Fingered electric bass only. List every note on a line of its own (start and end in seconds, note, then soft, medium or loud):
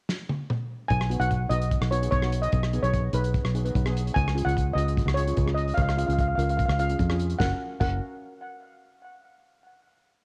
0.90 1.16 B1 medium
1.20 1.46 B1 medium
1.50 1.77 B1 medium
1.81 2.07 B1 medium
2.12 2.46 B1 medium
2.53 2.79 B1 medium
2.83 3.09 B1 medium
3.13 3.39 B1 medium
3.44 3.70 B1 medium
3.75 4.09 B1 medium
4.16 4.42 C#2 loud
4.45 4.71 C#2 medium
4.75 5.01 C#2 medium
5.06 5.32 C#2 medium
5.37 5.71 C#2 medium
5.77 6.03 C#2 loud
6.08 6.34 C#2 medium
6.37 6.64 C#2 medium
6.68 6.94 C#2 medium
7.00 7.34 F2 medium
7.40 7.51 F#1 medium
7.80 7.99 F#1 medium